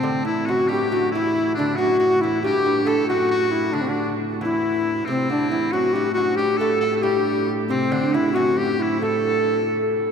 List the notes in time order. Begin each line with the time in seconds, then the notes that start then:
Already playing: A2 C4
0.03 D3
0.25 E2 E4
0.46 F#2 F#4
0.50 F#4
0.68 G2 G4
0.91 F#2 F#4
1.11 E4
1.15 E2
1.54 D4
1.59 D2
1.76 F#2 F#4
1.99 F#2 F#4
2.21 E2 E4
2.42 G2 G4
2.66 G2
2.85 A2 A4
3.08 F#2 F#4
3.31 F#4
3.51 E4
3.72 D2 D4
3.81 C4
3.87 D2 D4
4.41 E2 E4
5.05 A2 C3 C4
5.10 C4
5.30 D2 D4
5.51 E2 E4
5.72 F#2 F#4
5.93 G2 G4
6.13 F#4
6.17 F#2
6.35 G2 G4
6.57 A2 A4
6.80 A2 A4
6.95 A4
7.02 G2 G4
7.69 C3 C4
7.92 D3 D4
8.14 E2 E4
8.33 F#2 F#4
8.57 G4
8.80 E4
9.01 A2 A4